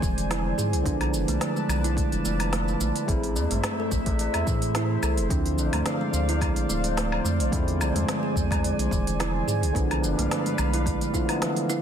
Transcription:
Already playing: D3 F3 G#3 C4 E4 C5 D5 G#5
0.02 E1 E3, kick, shaker
0.18 open hi-hat, shaker
0.31 E4, snare, open hi-hat, low woodblock, shaker
0.58 G#2 G#4, shaker
0.72 B1, open hi-hat, shaker
0.83 B1 D3 F3 B3 D4 B4 D5 A5, kick, open hi-hat, shaker
1.01 open hi-hat, low woodblock
1.13 F1, shaker
1.28 B1 A3, open hi-hat, shaker
1.41 snare, open hi-hat, shaker
1.56 G#3, shaker
1.68 B1, low woodblock, shaker
1.84 E4, open hi-hat, shaker
1.97 kick, open hi-hat, shaker
2.11 F1, open hi-hat, shaker
2.25 F1 A3, shaker
2.40 open hi-hat, low woodblock, shaker
2.53 A3, snare, open hi-hat, shaker
2.68 shaker
2.80 A1 A3, shaker
2.96 open hi-hat, shaker
3.06 A1 A3 C4 E4 G#4 C5 E5, kick, open hi-hat, shaker
3.23 open hi-hat
3.36 E2, tabla na, shaker
3.51 A1 A3, open hi-hat, tabla tin, tabla ge, shaker
3.64 snare, open hi-hat, low woodblock, shaker
3.79 A4, tabla tin
3.92 A1, kick, shaker
4.06 A3, kick, open hi-hat, tabla na, shaker
4.19 open hi-hat, tabla na, shaker
4.34 E2, open hi-hat, low woodblock, shaker
4.47 A2 E3, kick, shaker
4.62 open hi-hat, shaker
4.75 E4, snare, open hi-hat, shaker
5.02 C2 A4, tabla tin, low woodblock, shaker
5.17 E1, open hi-hat, shaker
5.28 D2 D3 F3 C4 D4 D5 F5, kick, open hi-hat, shaker
5.46 open hi-hat
5.58 A1, tabla na, shaker
5.72 D2 A3, open hi-hat, tabla tin, tabla ge, low woodblock, shaker
5.86 snare, open hi-hat, shaker
6.00 G#3, tabla tin
6.13 D2, shaker
6.29 E4, open hi-hat, tabla na, shaker
6.41 kick, open hi-hat, low woodblock, shaker
6.56 A1, open hi-hat, shaker
6.69 D1 A3, shaker
6.84 open hi-hat, tabla na, shaker
6.97 A3, snare, open hi-hat, shaker
7.12 low woodblock
7.24 F2 A3, shaker
7.39 A1, open hi-hat, tabla tin, shaker
7.51 E2 D3 F3 G#3 C4 G#5, kick, open hi-hat, shaker
7.55 E4
7.68 open hi-hat
7.80 B1, tabla na, low woodblock, shaker
7.95 E2 G#3, open hi-hat, tabla tin, tabla ge, shaker
8.09 snare, open hi-hat, shaker
8.23 G#4, tabla tin
8.36 E2, kick, shaker
8.51 G#3, kick, open hi-hat, tabla na, low woodblock, shaker
8.63 open hi-hat, tabla na, shaker
8.78 B1, open hi-hat, shaker
8.91 E1 E3, kick, shaker
9.07 open hi-hat, shaker
9.20 E4, snare, open hi-hat, low woodblock, shaker
9.47 G#2 G#4, tabla tin, shaker
9.62 B1, open hi-hat, shaker
9.73 B1 D3 F3 B3 D4 B4 D5 F5, kick, open hi-hat, shaker
9.91 open hi-hat, low woodblock
10.02 F1, tabla na, tabla ge, shaker
10.18 B1 A3, open hi-hat, tabla tin, tabla ge, shaker
10.31 snare, open hi-hat, shaker
10.45 G#3, open hi-hat, tabla tin, shaker
10.58 B1, low woodblock, shaker
10.73 E4, open hi-hat, tabla na, shaker
10.86 kick, open hi-hat, shaker
11.01 open hi-hat, shaker
11.13 D3 F3 A3 B3 E4 F4, kick, shaker
11.27 D3 A3 B3, open hi-hat, tabla na, low woodblock, shaker
11.42 E3, snare, open hi-hat, shaker
11.56 open hi-hat, shaker
11.69 E4, shaker

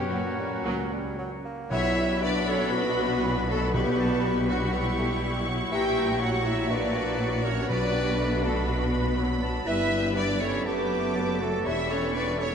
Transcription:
Already playing: F#2 B2 F#3 C#4 G4 C#5
0.11 A#2 F#3 C#4 F#4 A#4
0.40 G3
0.65 C#2 F#3 C#4 F#4
0.92 G3
1.19 F#3
1.45 A#3
1.70 B1 B2 B3 D4 E4 F#4 C#5 E5 B5
1.97 G3
2.22 F#3 D4 B4 D5 B5
2.48 C#4 A4 C#5
2.72 B3 F#4 B4 B5
3.24 E3 B5
3.48 F#3 A3 F#4 A4
3.74 B2 G3 B3 E4 G4 B4 B5 C#6
3.99 A5
4.26 B5
4.49 F#3 D4 F#4
4.73 G3 B3 E4 G4
4.99 A3
5.23 G3
5.48 F#3
5.72 A#1 A#2 E3 F#4 G4 E5 G5 A#5
5.98 A#5
6.20 F#3 F#4 C#5 F#5 A#5
6.44 E4 C#5 E5
6.68 A#3 D4 B4 D5
6.96 A#3
7.20 F#3
7.44 C#4 A#4 C#5
7.69 B1 B2 F#3 D4 B4 D5 B5
7.94 G3
8.19 A3 B5
8.43 A3 B3 F#4 A4
8.68 B3 F#4 B4
9.18 F#3 B5
9.42 A5
9.65 G1 G2 G3 B3 E4 G4 B4 E5 B5
10.15 D4 B4 D5 B5
10.39 C#4 A4 C#5
10.65 F#1 F#2 A3 B3 G4 A4 B4 A5 D6
11.16 F#3 A5
11.40 A3 F#4 A4 A5
11.64 E1 E2 E3 G3 E4 G4 C#5 E5 B5 C#6
11.90 C#4 A4 C#5
12.14 D4 B4 D5
12.39 C#4 A4 C#5

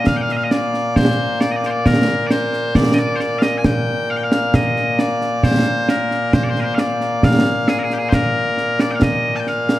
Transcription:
Already playing: A#2 A#3
0.06 F5, concert bass drum, snare
0.16 G5
0.21 F5
0.29 D#5, snare
0.36 F5
0.44 D#5
0.51 D5, snare
0.74 snare
0.96 C5, concert bass drum, snare
1.41 D5, snare
1.51 D#5
1.56 D5
1.63 C5, snare
1.70 D5
1.86 A#4, concert bass drum, snare
2.27 C5 D5, snare
2.53 snare
2.75 D5, concert bass drum, snare
2.94 D#5
2.98 D5
3.16 C5
3.20 D5, snare
3.39 D#5 F5, snare
3.58 G#5
3.64 G5, concert bass drum, snare
4.10 F5
4.17 G5
4.23 F5
4.32 snare
4.54 D#5, concert bass drum, snare
4.76 snare
4.99 D5, snare
5.21 snare
5.43 C5, concert bass drum, snare
5.66 snare
5.89 A#4, snare
6.11 snare
6.33 C5, concert bass drum, snare
6.44 D5
6.49 C5
6.56 snare
6.60 A#4 C5
6.75 F5, snare
6.79 D5
7.01 snare
7.23 F5, concert bass drum, snare
7.68 G#4, snare
7.79 A#4
7.83 G#4
7.90 G4, snare
7.98 G#4
8.09 C5, concert bass drum, snare
8.13 A#4
8.57 snare
8.79 D5, snare
8.91 G5
8.95 F5
9.02 D#5, concert bass drum, snare
9.36 G5 A5
9.47 F5, snare
9.69 snare

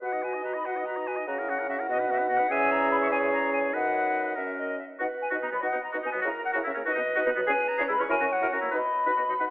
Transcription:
0.01 B2 F#4 B4 D#5 F#5
0.13 D#4 D#5
0.23 F#4 B4 G#5
0.34 D#4 D#5
0.44 F#4 B4 A#5
0.54 D#4 D#5 B5
0.64 B2 F#4 B4 F#5
0.76 D#4 D#5
0.85 F#4 B4 A#5
0.96 D#4 D#5
1.06 F#4 B4 G#5
1.17 D#4 D#5
1.27 C#3 C#4 F#4 F#5 A#5
1.39 E4 A#4
1.48 C#4 F#4 F#5
1.59 E4 A#4
1.68 C#4 F#4 E5
1.79 E4 A#4
1.89 B2 B3 F#4 D#5
1.99 D#4 B4
2.10 B3 F#4 E5
2.18 D#4 B4
2.28 B3 F#4 F#5
2.38 D#4 B4
2.49 E2 C#4 G#4 E5 G#5
2.71 A#5
2.91 B5
3.02 C#6
3.11 C#4 G#4 C#5 G#5
3.32 A#5
3.52 G#5
3.73 F#2 D#4 B4 D#5 F#5
4.35 F#2 C#4 A#4 E5
4.57 D#5
4.78 E5
4.99 B2 D#4 F#4 B4 F#5
5.21 G#5
5.30 B2 D#4 F#4
5.42 B2 B3 D#4 A#5
5.52 B2 F#3 B3 B5
5.61 B2 D#4 F#4 D#5 F#5
5.72 B2 B3 D#4
5.84 A#5
5.92 B2 D#4 F#4
6.03 B2 B3 D#4 G#5
6.12 B2 F#3 B3
6.22 C#3 F#4 A#4 A#5
6.26 E4
6.44 F#5
6.53 C#3 E4 F#4
6.64 C#3 C#4 E4 E5
6.74 C#3 A#3 C#4
6.85 B2 D#4 F#4 B4 D#5
6.95 B2 B3 D#4
7.15 B2 D#4 F#4
7.26 B2 B3 D#4
7.36 B2 F#3 B3
7.47 E2 C#4 G#4 G#5
7.67 A#5
7.78 E2 C#4 G#4
7.89 E2 G#3 E4 B5
7.98 E2 E3 C#4 C#6
8.09 F#2 E4 A#4 C#5 G#5
8.21 F#2 C#4 F#4
8.32 F#5
8.41 F#2 E4 A#4
8.52 F#2 C#4 F#4 A#5
8.61 F#2 A#3 E4
8.71 B2 D#4 B4 D#5
8.76 B5
9.06 B2 D#4 B4
9.17 B2 B3 F#4
9.28 B2 F#3 D#4
9.39 B2 D#4 B4 F#5

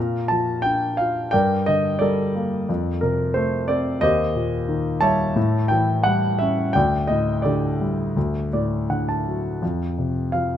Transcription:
Already playing: A#2 D5 F5 A#5
0.28 F3 A5
0.62 D4 G5
0.97 F4 F5
1.31 G2 A#4 D5 G5
1.66 D3 D#5
1.99 G3 A4 A#4 D5
2.35 A#3
2.69 F2
3.01 C3 A#4
3.34 A3 C5
3.68 C4 D5
4.01 D#2 G4 C5 D#5
4.35 A#2
4.68 D#3
5.01 G3 C#5 E5 A5
5.36 A2
5.68 E3 G5
6.03 G3 F#5
6.39 C#4 E5
6.73 D2 D5 G5
7.07 A2 D#5
7.42 D3 G4 A4 D5
7.81 G3
8.17 D2
8.53 A2 D5
8.90 D3 F#5
9.09 A5
9.27 F#3
9.62 F2
9.99 C3
10.32 F3 F5

